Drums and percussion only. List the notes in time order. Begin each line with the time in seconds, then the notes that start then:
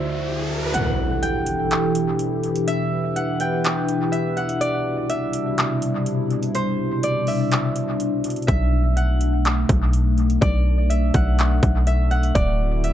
0.74 closed hi-hat
1.23 closed hi-hat
1.46 closed hi-hat
1.71 clap, closed hi-hat
1.95 closed hi-hat
2.19 closed hi-hat
2.43 closed hi-hat
2.56 closed hi-hat
2.68 closed hi-hat
3.16 closed hi-hat
3.40 closed hi-hat
3.64 clap, closed hi-hat
3.88 closed hi-hat
4.13 closed hi-hat
4.37 closed hi-hat
4.49 closed hi-hat
4.61 closed hi-hat
5.10 closed hi-hat
5.33 closed hi-hat
5.58 clap, closed hi-hat
5.82 closed hi-hat
6.06 closed hi-hat
6.31 closed hi-hat
6.43 closed hi-hat
6.55 closed hi-hat
7.03 closed hi-hat
7.27 open hi-hat
7.51 clap, closed hi-hat
7.76 closed hi-hat
8.00 closed hi-hat
8.24 closed hi-hat
8.30 closed hi-hat
8.36 closed hi-hat
8.42 closed hi-hat
8.48 kick, closed hi-hat
8.97 closed hi-hat
9.21 closed hi-hat
9.45 clap, closed hi-hat
9.69 kick, closed hi-hat
9.93 closed hi-hat
10.18 closed hi-hat
10.30 closed hi-hat
10.42 kick, closed hi-hat
10.90 closed hi-hat
11.14 kick, closed hi-hat
11.39 clap, closed hi-hat
11.63 kick, closed hi-hat
11.87 closed hi-hat
12.11 closed hi-hat
12.23 closed hi-hat
12.35 kick, closed hi-hat
12.84 closed hi-hat